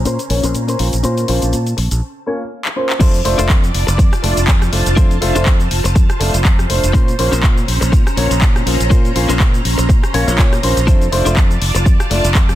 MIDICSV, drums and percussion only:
0, 0, Header, 1, 2, 480
1, 0, Start_track
1, 0, Key_signature, -1, "major"
1, 0, Tempo, 491803
1, 1015, Time_signature, 4, 2, 24, 8
1, 12250, End_track
2, 0, Start_track
2, 0, Title_t, "Drums"
2, 53, Note_on_c, 9, 42, 46
2, 55, Note_on_c, 9, 82, 48
2, 150, Note_off_c, 9, 42, 0
2, 153, Note_off_c, 9, 82, 0
2, 187, Note_on_c, 9, 42, 23
2, 190, Note_on_c, 9, 82, 29
2, 285, Note_off_c, 9, 42, 0
2, 287, Note_off_c, 9, 82, 0
2, 293, Note_on_c, 9, 46, 101
2, 390, Note_off_c, 9, 46, 0
2, 425, Note_on_c, 9, 42, 48
2, 427, Note_on_c, 9, 82, 59
2, 523, Note_off_c, 9, 42, 0
2, 525, Note_off_c, 9, 82, 0
2, 533, Note_on_c, 9, 42, 48
2, 535, Note_on_c, 9, 82, 51
2, 630, Note_off_c, 9, 42, 0
2, 632, Note_off_c, 9, 82, 0
2, 668, Note_on_c, 9, 42, 24
2, 670, Note_on_c, 9, 82, 30
2, 766, Note_off_c, 9, 42, 0
2, 768, Note_off_c, 9, 82, 0
2, 774, Note_on_c, 9, 46, 105
2, 871, Note_off_c, 9, 46, 0
2, 907, Note_on_c, 9, 42, 47
2, 909, Note_on_c, 9, 82, 61
2, 1004, Note_off_c, 9, 42, 0
2, 1007, Note_off_c, 9, 82, 0
2, 1012, Note_on_c, 9, 42, 47
2, 1014, Note_on_c, 9, 82, 49
2, 1109, Note_off_c, 9, 42, 0
2, 1111, Note_off_c, 9, 82, 0
2, 1147, Note_on_c, 9, 42, 24
2, 1149, Note_on_c, 9, 82, 30
2, 1244, Note_off_c, 9, 42, 0
2, 1247, Note_off_c, 9, 82, 0
2, 1252, Note_on_c, 9, 46, 103
2, 1349, Note_off_c, 9, 46, 0
2, 1387, Note_on_c, 9, 42, 47
2, 1390, Note_on_c, 9, 82, 60
2, 1485, Note_off_c, 9, 42, 0
2, 1487, Note_off_c, 9, 82, 0
2, 1493, Note_on_c, 9, 42, 46
2, 1495, Note_on_c, 9, 82, 51
2, 1590, Note_off_c, 9, 42, 0
2, 1592, Note_off_c, 9, 82, 0
2, 1626, Note_on_c, 9, 42, 23
2, 1628, Note_on_c, 9, 82, 29
2, 1723, Note_off_c, 9, 42, 0
2, 1726, Note_off_c, 9, 82, 0
2, 1735, Note_on_c, 9, 46, 102
2, 1833, Note_off_c, 9, 46, 0
2, 1868, Note_on_c, 9, 42, 47
2, 1870, Note_on_c, 9, 82, 60
2, 1965, Note_off_c, 9, 42, 0
2, 1967, Note_off_c, 9, 82, 0
2, 2587, Note_on_c, 9, 39, 70
2, 2685, Note_off_c, 9, 39, 0
2, 2826, Note_on_c, 9, 39, 89
2, 2924, Note_off_c, 9, 39, 0
2, 2934, Note_on_c, 9, 36, 119
2, 2934, Note_on_c, 9, 42, 55
2, 2934, Note_on_c, 9, 49, 102
2, 2936, Note_on_c, 9, 82, 55
2, 3032, Note_off_c, 9, 36, 0
2, 3032, Note_off_c, 9, 42, 0
2, 3032, Note_off_c, 9, 49, 0
2, 3034, Note_off_c, 9, 82, 0
2, 3066, Note_on_c, 9, 42, 27
2, 3068, Note_on_c, 9, 82, 34
2, 3164, Note_off_c, 9, 42, 0
2, 3166, Note_off_c, 9, 82, 0
2, 3174, Note_on_c, 9, 46, 107
2, 3272, Note_off_c, 9, 46, 0
2, 3307, Note_on_c, 9, 42, 55
2, 3309, Note_on_c, 9, 82, 69
2, 3404, Note_off_c, 9, 42, 0
2, 3406, Note_off_c, 9, 82, 0
2, 3410, Note_on_c, 9, 39, 124
2, 3414, Note_on_c, 9, 36, 121
2, 3415, Note_on_c, 9, 42, 55
2, 3417, Note_on_c, 9, 82, 58
2, 3508, Note_off_c, 9, 39, 0
2, 3511, Note_off_c, 9, 36, 0
2, 3512, Note_off_c, 9, 42, 0
2, 3515, Note_off_c, 9, 82, 0
2, 3550, Note_on_c, 9, 42, 26
2, 3552, Note_on_c, 9, 82, 34
2, 3648, Note_off_c, 9, 42, 0
2, 3650, Note_off_c, 9, 82, 0
2, 3655, Note_on_c, 9, 46, 105
2, 3753, Note_off_c, 9, 46, 0
2, 3790, Note_on_c, 9, 42, 57
2, 3792, Note_on_c, 9, 82, 69
2, 3887, Note_off_c, 9, 42, 0
2, 3889, Note_off_c, 9, 82, 0
2, 3893, Note_on_c, 9, 36, 117
2, 3896, Note_on_c, 9, 42, 55
2, 3898, Note_on_c, 9, 82, 54
2, 3991, Note_off_c, 9, 36, 0
2, 3994, Note_off_c, 9, 42, 0
2, 3996, Note_off_c, 9, 82, 0
2, 4029, Note_on_c, 9, 37, 63
2, 4029, Note_on_c, 9, 42, 27
2, 4031, Note_on_c, 9, 82, 34
2, 4126, Note_off_c, 9, 37, 0
2, 4126, Note_off_c, 9, 42, 0
2, 4128, Note_off_c, 9, 82, 0
2, 4135, Note_on_c, 9, 46, 109
2, 4233, Note_off_c, 9, 46, 0
2, 4268, Note_on_c, 9, 42, 55
2, 4270, Note_on_c, 9, 82, 66
2, 4365, Note_off_c, 9, 42, 0
2, 4368, Note_off_c, 9, 82, 0
2, 4369, Note_on_c, 9, 39, 127
2, 4373, Note_on_c, 9, 36, 123
2, 4374, Note_on_c, 9, 42, 57
2, 4376, Note_on_c, 9, 82, 59
2, 4467, Note_off_c, 9, 39, 0
2, 4471, Note_off_c, 9, 36, 0
2, 4472, Note_off_c, 9, 42, 0
2, 4474, Note_off_c, 9, 82, 0
2, 4507, Note_on_c, 9, 37, 62
2, 4507, Note_on_c, 9, 42, 28
2, 4510, Note_on_c, 9, 82, 33
2, 4605, Note_off_c, 9, 37, 0
2, 4605, Note_off_c, 9, 42, 0
2, 4607, Note_off_c, 9, 82, 0
2, 4613, Note_on_c, 9, 46, 107
2, 4711, Note_off_c, 9, 46, 0
2, 4747, Note_on_c, 9, 42, 57
2, 4749, Note_on_c, 9, 82, 68
2, 4845, Note_off_c, 9, 42, 0
2, 4847, Note_off_c, 9, 82, 0
2, 4853, Note_on_c, 9, 42, 54
2, 4854, Note_on_c, 9, 36, 127
2, 4855, Note_on_c, 9, 82, 53
2, 4951, Note_off_c, 9, 36, 0
2, 4951, Note_off_c, 9, 42, 0
2, 4953, Note_off_c, 9, 82, 0
2, 4986, Note_on_c, 9, 42, 27
2, 4989, Note_on_c, 9, 82, 34
2, 5084, Note_off_c, 9, 42, 0
2, 5086, Note_off_c, 9, 82, 0
2, 5093, Note_on_c, 9, 46, 112
2, 5191, Note_off_c, 9, 46, 0
2, 5228, Note_on_c, 9, 42, 53
2, 5230, Note_on_c, 9, 82, 64
2, 5325, Note_off_c, 9, 42, 0
2, 5327, Note_off_c, 9, 82, 0
2, 5328, Note_on_c, 9, 39, 125
2, 5333, Note_on_c, 9, 42, 55
2, 5334, Note_on_c, 9, 36, 127
2, 5335, Note_on_c, 9, 82, 53
2, 5426, Note_off_c, 9, 39, 0
2, 5430, Note_off_c, 9, 42, 0
2, 5432, Note_off_c, 9, 36, 0
2, 5433, Note_off_c, 9, 82, 0
2, 5466, Note_on_c, 9, 42, 26
2, 5468, Note_on_c, 9, 82, 33
2, 5564, Note_off_c, 9, 42, 0
2, 5566, Note_off_c, 9, 82, 0
2, 5573, Note_on_c, 9, 46, 113
2, 5671, Note_off_c, 9, 46, 0
2, 5710, Note_on_c, 9, 42, 53
2, 5712, Note_on_c, 9, 82, 68
2, 5807, Note_off_c, 9, 42, 0
2, 5809, Note_off_c, 9, 82, 0
2, 5814, Note_on_c, 9, 36, 121
2, 5815, Note_on_c, 9, 42, 53
2, 5818, Note_on_c, 9, 82, 52
2, 5912, Note_off_c, 9, 36, 0
2, 5913, Note_off_c, 9, 42, 0
2, 5915, Note_off_c, 9, 82, 0
2, 5950, Note_on_c, 9, 37, 63
2, 5950, Note_on_c, 9, 42, 26
2, 5952, Note_on_c, 9, 82, 33
2, 6047, Note_off_c, 9, 37, 0
2, 6047, Note_off_c, 9, 42, 0
2, 6050, Note_off_c, 9, 82, 0
2, 6057, Note_on_c, 9, 46, 109
2, 6155, Note_off_c, 9, 46, 0
2, 6190, Note_on_c, 9, 42, 55
2, 6192, Note_on_c, 9, 82, 65
2, 6288, Note_off_c, 9, 42, 0
2, 6290, Note_off_c, 9, 82, 0
2, 6293, Note_on_c, 9, 39, 127
2, 6295, Note_on_c, 9, 36, 127
2, 6298, Note_on_c, 9, 42, 58
2, 6300, Note_on_c, 9, 82, 56
2, 6391, Note_off_c, 9, 39, 0
2, 6392, Note_off_c, 9, 36, 0
2, 6396, Note_off_c, 9, 42, 0
2, 6398, Note_off_c, 9, 82, 0
2, 6432, Note_on_c, 9, 37, 64
2, 6432, Note_on_c, 9, 42, 26
2, 6434, Note_on_c, 9, 82, 33
2, 6529, Note_off_c, 9, 37, 0
2, 6529, Note_off_c, 9, 42, 0
2, 6531, Note_off_c, 9, 82, 0
2, 6537, Note_on_c, 9, 46, 112
2, 6635, Note_off_c, 9, 46, 0
2, 6673, Note_on_c, 9, 42, 56
2, 6675, Note_on_c, 9, 82, 67
2, 6770, Note_off_c, 9, 42, 0
2, 6772, Note_off_c, 9, 82, 0
2, 6775, Note_on_c, 9, 36, 122
2, 6779, Note_on_c, 9, 42, 52
2, 6781, Note_on_c, 9, 82, 55
2, 6873, Note_off_c, 9, 36, 0
2, 6876, Note_off_c, 9, 42, 0
2, 6879, Note_off_c, 9, 82, 0
2, 6913, Note_on_c, 9, 42, 26
2, 6915, Note_on_c, 9, 82, 31
2, 7010, Note_off_c, 9, 42, 0
2, 7012, Note_off_c, 9, 82, 0
2, 7016, Note_on_c, 9, 46, 113
2, 7114, Note_off_c, 9, 46, 0
2, 7152, Note_on_c, 9, 42, 50
2, 7154, Note_on_c, 9, 82, 65
2, 7250, Note_off_c, 9, 42, 0
2, 7252, Note_off_c, 9, 82, 0
2, 7255, Note_on_c, 9, 39, 123
2, 7256, Note_on_c, 9, 36, 127
2, 7259, Note_on_c, 9, 42, 52
2, 7262, Note_on_c, 9, 82, 53
2, 7352, Note_off_c, 9, 39, 0
2, 7353, Note_off_c, 9, 36, 0
2, 7357, Note_off_c, 9, 42, 0
2, 7359, Note_off_c, 9, 82, 0
2, 7393, Note_on_c, 9, 42, 25
2, 7395, Note_on_c, 9, 82, 33
2, 7490, Note_off_c, 9, 42, 0
2, 7492, Note_off_c, 9, 82, 0
2, 7499, Note_on_c, 9, 46, 110
2, 7597, Note_off_c, 9, 46, 0
2, 7634, Note_on_c, 9, 42, 54
2, 7636, Note_on_c, 9, 82, 66
2, 7731, Note_off_c, 9, 42, 0
2, 7733, Note_off_c, 9, 82, 0
2, 7737, Note_on_c, 9, 36, 123
2, 7741, Note_on_c, 9, 42, 52
2, 7743, Note_on_c, 9, 82, 54
2, 7834, Note_off_c, 9, 36, 0
2, 7839, Note_off_c, 9, 42, 0
2, 7841, Note_off_c, 9, 82, 0
2, 7874, Note_on_c, 9, 37, 65
2, 7874, Note_on_c, 9, 42, 26
2, 7876, Note_on_c, 9, 82, 31
2, 7972, Note_off_c, 9, 37, 0
2, 7972, Note_off_c, 9, 42, 0
2, 7974, Note_off_c, 9, 82, 0
2, 7978, Note_on_c, 9, 46, 115
2, 8076, Note_off_c, 9, 46, 0
2, 8111, Note_on_c, 9, 42, 55
2, 8113, Note_on_c, 9, 82, 66
2, 8209, Note_off_c, 9, 42, 0
2, 8211, Note_off_c, 9, 82, 0
2, 8213, Note_on_c, 9, 39, 127
2, 8216, Note_on_c, 9, 36, 127
2, 8218, Note_on_c, 9, 42, 53
2, 8220, Note_on_c, 9, 82, 57
2, 8311, Note_off_c, 9, 39, 0
2, 8314, Note_off_c, 9, 36, 0
2, 8316, Note_off_c, 9, 42, 0
2, 8318, Note_off_c, 9, 82, 0
2, 8354, Note_on_c, 9, 37, 67
2, 8354, Note_on_c, 9, 42, 25
2, 8356, Note_on_c, 9, 82, 32
2, 8451, Note_off_c, 9, 37, 0
2, 8451, Note_off_c, 9, 42, 0
2, 8453, Note_off_c, 9, 82, 0
2, 8460, Note_on_c, 9, 46, 113
2, 8557, Note_off_c, 9, 46, 0
2, 8594, Note_on_c, 9, 42, 52
2, 8596, Note_on_c, 9, 82, 64
2, 8691, Note_off_c, 9, 42, 0
2, 8693, Note_off_c, 9, 82, 0
2, 8696, Note_on_c, 9, 36, 127
2, 8700, Note_on_c, 9, 42, 51
2, 8702, Note_on_c, 9, 82, 54
2, 8794, Note_off_c, 9, 36, 0
2, 8797, Note_off_c, 9, 42, 0
2, 8800, Note_off_c, 9, 82, 0
2, 8833, Note_on_c, 9, 42, 25
2, 8835, Note_on_c, 9, 82, 32
2, 8931, Note_off_c, 9, 42, 0
2, 8933, Note_off_c, 9, 82, 0
2, 8937, Note_on_c, 9, 46, 108
2, 9035, Note_off_c, 9, 46, 0
2, 9071, Note_on_c, 9, 42, 49
2, 9074, Note_on_c, 9, 82, 65
2, 9169, Note_off_c, 9, 42, 0
2, 9171, Note_off_c, 9, 82, 0
2, 9174, Note_on_c, 9, 39, 116
2, 9177, Note_on_c, 9, 36, 127
2, 9179, Note_on_c, 9, 42, 50
2, 9181, Note_on_c, 9, 82, 53
2, 9272, Note_off_c, 9, 39, 0
2, 9274, Note_off_c, 9, 36, 0
2, 9277, Note_off_c, 9, 42, 0
2, 9279, Note_off_c, 9, 82, 0
2, 9313, Note_on_c, 9, 42, 25
2, 9315, Note_on_c, 9, 82, 32
2, 9410, Note_off_c, 9, 42, 0
2, 9412, Note_off_c, 9, 82, 0
2, 9420, Note_on_c, 9, 46, 110
2, 9517, Note_off_c, 9, 46, 0
2, 9551, Note_on_c, 9, 42, 52
2, 9553, Note_on_c, 9, 82, 66
2, 9649, Note_off_c, 9, 42, 0
2, 9651, Note_off_c, 9, 82, 0
2, 9657, Note_on_c, 9, 36, 121
2, 9659, Note_on_c, 9, 42, 49
2, 9661, Note_on_c, 9, 82, 55
2, 9754, Note_off_c, 9, 36, 0
2, 9757, Note_off_c, 9, 42, 0
2, 9759, Note_off_c, 9, 82, 0
2, 9794, Note_on_c, 9, 37, 66
2, 9794, Note_on_c, 9, 42, 25
2, 9796, Note_on_c, 9, 82, 33
2, 9891, Note_off_c, 9, 37, 0
2, 9891, Note_off_c, 9, 42, 0
2, 9893, Note_off_c, 9, 82, 0
2, 9899, Note_on_c, 9, 46, 110
2, 9996, Note_off_c, 9, 46, 0
2, 10034, Note_on_c, 9, 42, 51
2, 10037, Note_on_c, 9, 82, 67
2, 10132, Note_off_c, 9, 42, 0
2, 10134, Note_off_c, 9, 82, 0
2, 10136, Note_on_c, 9, 39, 120
2, 10137, Note_on_c, 9, 36, 123
2, 10141, Note_on_c, 9, 42, 52
2, 10143, Note_on_c, 9, 82, 56
2, 10234, Note_off_c, 9, 36, 0
2, 10234, Note_off_c, 9, 39, 0
2, 10238, Note_off_c, 9, 42, 0
2, 10241, Note_off_c, 9, 82, 0
2, 10274, Note_on_c, 9, 37, 69
2, 10274, Note_on_c, 9, 42, 26
2, 10276, Note_on_c, 9, 82, 33
2, 10371, Note_off_c, 9, 37, 0
2, 10371, Note_off_c, 9, 42, 0
2, 10373, Note_off_c, 9, 82, 0
2, 10379, Note_on_c, 9, 46, 117
2, 10476, Note_off_c, 9, 46, 0
2, 10513, Note_on_c, 9, 42, 51
2, 10515, Note_on_c, 9, 82, 65
2, 10610, Note_off_c, 9, 42, 0
2, 10612, Note_off_c, 9, 82, 0
2, 10616, Note_on_c, 9, 36, 121
2, 10619, Note_on_c, 9, 42, 51
2, 10621, Note_on_c, 9, 82, 56
2, 10714, Note_off_c, 9, 36, 0
2, 10716, Note_off_c, 9, 42, 0
2, 10718, Note_off_c, 9, 82, 0
2, 10751, Note_on_c, 9, 42, 25
2, 10753, Note_on_c, 9, 82, 33
2, 10848, Note_off_c, 9, 42, 0
2, 10850, Note_off_c, 9, 82, 0
2, 10858, Note_on_c, 9, 46, 107
2, 10955, Note_off_c, 9, 46, 0
2, 10991, Note_on_c, 9, 42, 52
2, 10993, Note_on_c, 9, 82, 70
2, 11089, Note_off_c, 9, 42, 0
2, 11091, Note_off_c, 9, 82, 0
2, 11093, Note_on_c, 9, 39, 111
2, 11096, Note_on_c, 9, 36, 121
2, 11097, Note_on_c, 9, 42, 52
2, 11100, Note_on_c, 9, 82, 58
2, 11190, Note_off_c, 9, 39, 0
2, 11194, Note_off_c, 9, 36, 0
2, 11195, Note_off_c, 9, 42, 0
2, 11197, Note_off_c, 9, 82, 0
2, 11231, Note_on_c, 9, 42, 24
2, 11233, Note_on_c, 9, 82, 32
2, 11329, Note_off_c, 9, 42, 0
2, 11331, Note_off_c, 9, 82, 0
2, 11337, Note_on_c, 9, 46, 104
2, 11435, Note_off_c, 9, 46, 0
2, 11471, Note_on_c, 9, 42, 52
2, 11473, Note_on_c, 9, 82, 70
2, 11568, Note_off_c, 9, 42, 0
2, 11570, Note_off_c, 9, 82, 0
2, 11576, Note_on_c, 9, 36, 120
2, 11578, Note_on_c, 9, 42, 50
2, 11580, Note_on_c, 9, 82, 57
2, 11673, Note_off_c, 9, 36, 0
2, 11676, Note_off_c, 9, 42, 0
2, 11678, Note_off_c, 9, 82, 0
2, 11713, Note_on_c, 9, 37, 68
2, 11713, Note_on_c, 9, 42, 25
2, 11715, Note_on_c, 9, 82, 35
2, 11810, Note_off_c, 9, 37, 0
2, 11810, Note_off_c, 9, 42, 0
2, 11812, Note_off_c, 9, 82, 0
2, 11818, Note_on_c, 9, 46, 106
2, 11916, Note_off_c, 9, 46, 0
2, 11951, Note_on_c, 9, 42, 54
2, 11953, Note_on_c, 9, 82, 70
2, 12049, Note_off_c, 9, 42, 0
2, 12051, Note_off_c, 9, 82, 0
2, 12052, Note_on_c, 9, 39, 118
2, 12055, Note_on_c, 9, 36, 124
2, 12057, Note_on_c, 9, 42, 54
2, 12059, Note_on_c, 9, 82, 59
2, 12150, Note_off_c, 9, 39, 0
2, 12152, Note_off_c, 9, 36, 0
2, 12155, Note_off_c, 9, 42, 0
2, 12157, Note_off_c, 9, 82, 0
2, 12191, Note_on_c, 9, 37, 69
2, 12191, Note_on_c, 9, 42, 26
2, 12193, Note_on_c, 9, 82, 33
2, 12250, Note_off_c, 9, 37, 0
2, 12250, Note_off_c, 9, 42, 0
2, 12250, Note_off_c, 9, 82, 0
2, 12250, End_track
0, 0, End_of_file